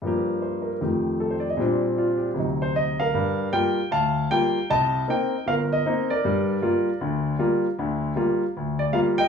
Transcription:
grand piano
0.02 G2 F3 A#3
0.07 G4
0.42 C5
0.62 A#4
0.81 F2 D#3 A3 G4
1.20 A4
1.30 C5
1.40 D5
1.50 D#5
1.57 A#2 G3 C4
1.62 D4
1.98 F4
2.18 G4
2.34 D2 C3 F#3
2.39 D#4
2.62 C5
2.76 D#5
3.00 A#4 F5
3.14 G2
3.53 G3 A#3 F4 G5
3.91 D2 F5 A5
4.31 G3 A#3 F4 G5
4.70 C2 D#5 A5
5.08 A#3 C4 D#4 G5
5.47 G1 A#4 F5
5.73 D#5
5.86 A#3 C4 D#4
6.10 A#4 D5
6.25 G2 G3
6.62 G3 A#3 F4
7.01 D2 D3
7.39 G3 A#3 F4
7.79 D2 D3
8.16 G3 A#3 F4
8.57 D2
8.79 D5
8.93 G3 A#3 F4 F5
9.18 D#5 G5

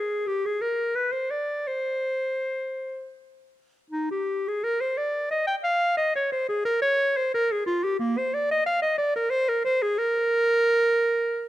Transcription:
clarinet
Already playing: G#4
0.27 G4
0.46 G#4
0.61 A#4
0.95 B4
1.12 C5
1.30 D5
1.67 C5
3.90 D#4
4.11 G4
4.48 G#4
4.64 A#4
4.81 C5
4.97 D5
5.31 D#5
5.47 G5
5.64 F5
5.97 D#5
6.15 C#5
6.32 C5
6.49 G#4
6.65 A#4
6.82 C#5
7.17 C5
7.34 A#4
7.52 G#4
7.66 F4
7.84 G4
7.99 A#3
8.18 C5
8.34 D5
8.51 D#5
8.66 F5
8.82 D#5
8.98 D5
9.16 A#4
9.30 C5
9.49 A#4
9.65 C5
9.82 G#4
9.98 A#4

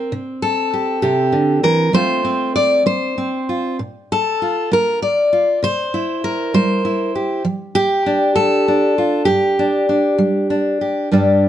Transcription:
steel-string acoustic guitar
Already playing: C4 A#4
0.12 C3
0.42 A4
0.74 G4
1.02 C3 G4
1.32 D3
1.63 E3 A#4
1.93 F3 A3 C4 F4 C5
2.25 C4
2.56 D5
2.86 A3 C5
3.18 C4
3.49 F4
3.79 A#2
4.12 A4
4.42 F4
4.72 A#3 A#4
5.02 D5
5.33 F4
5.63 C3 C5
5.94 E4
6.24 A#4
6.54 G3 C5
6.85 E4
7.15 G4
7.45 F3
7.75 G4
8.06 D4
8.36 A3 A4
8.68 D4
8.98 F4
9.25 G2 G4
9.59 D4
9.89 D4
10.18 G3
10.50 D4
10.81 G4
11.12 G2 G3 D4 G4

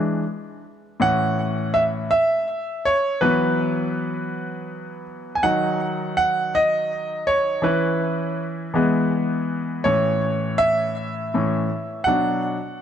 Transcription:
grand piano
Already playing: E3 G#3 D4 B4
1.00 A2 E3 C#4 F#5
1.74 E5
2.11 E5
2.85 C#5
3.21 E3 F#3 B3 B4
5.35 G#5
5.43 D#3 F#3 D#4 F#5
6.17 F#5
6.55 D#5
7.27 C#5
7.62 E3 C#4 E4 B4
8.74 E3 G#3 B3
9.84 A2 E3 C#4 C#5
10.58 E5
11.34 A2 E3 C#4
12.04 B2 F#3 D4 F#5

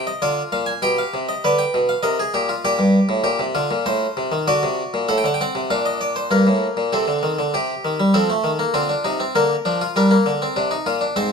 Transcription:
harpsichord
Already playing: C3 G4
0.07 D#5
0.22 D3 F4 D5
0.52 A#2 F5
0.66 G#5
0.82 B2 G4 G5
0.98 F5
1.14 C3
1.29 D#5
1.44 D3 B4 D5
1.59 G5
1.74 B2
1.89 F5
2.03 C3 A#4 D#5
2.20 G#4
2.34 A#2 G4
2.49 F4
2.65 A#2 G4 D5
2.79 G2
3.09 A2
3.24 A#2 G4
3.39 C3
3.55 D3 F4
3.71 A#2
3.86 A2 C5
4.17 C3
4.32 D#3
4.48 D3 F#4 D5
4.63 C3
4.94 A#2
5.09 A2 A4 F#5
5.18 G5
5.24 D3 F#5
5.34 G5
5.41 C4 F#5
5.55 C3
5.70 A#2 D4 F5
5.86 D#5
6.01 D5
6.16 C5
6.31 G2 A#3 A#4
6.47 A2
6.77 A#2
6.93 C3 C4 A4
7.08 D3
7.23 D#3
7.39 D3
7.54 C3 G4
7.85 D#3
8.00 G3
8.14 F3 C4 A4
8.30 A3
8.44 D#3
8.59 A#3
8.74 D3 C4 F4
8.89 D4
9.04 C3 D#4
9.20 C4
9.35 D3 A#3 A#4
9.65 F3 D4
9.81 F4
9.96 G3 D4 A#4
10.11 A#3
10.26 D3
10.42 C4
10.56 C3 D4
10.71 D#4
10.86 A#2 F4
11.01 D4
11.16 G#2 C4 C5

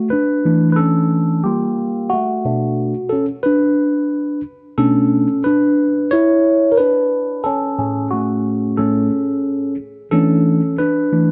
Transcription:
tine electric piano
0.10 D4 B4
0.45 E3 A3 D4
0.72 A4 B4
0.79 C#4
1.44 G3 A#3 F4 G4
2.10 A3 F#4
2.45 B2 A3 D4
3.09 C#4 A4
3.43 D4 B4
4.78 B2 A3 C#4 D4 A4
5.44 D4 B4
6.11 E4 C#5
6.72 A#4
6.77 D4 B4
7.44 C#4 A4
7.78 A2 C#4 G#4
8.11 A3 F#4
8.77 A2 A3 C#4 A4
10.11 E3 A3 C#4 D4 A4
10.78 D4 B4
11.12 E3 A3 D4

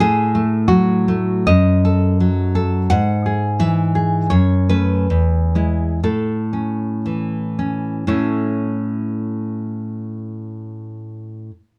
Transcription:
nylon-string guitar
0.00 A2 G#4
0.35 A3
0.68 F#3 F#4
1.08 A3
1.47 F#2 D#5
1.85 A4
2.20 F#3
2.55 A4
2.90 G#2 F#5
3.26 G#4
3.59 E3 E5
3.95 G#4
4.30 F#2 C#5
4.69 A3 C#4 B4
5.10 E2
5.55 G#3 E4
6.04 A2 A4
6.53 C#4
7.06 E3
7.59 C#4
8.07 A2 C#4 E4 A4 C#5

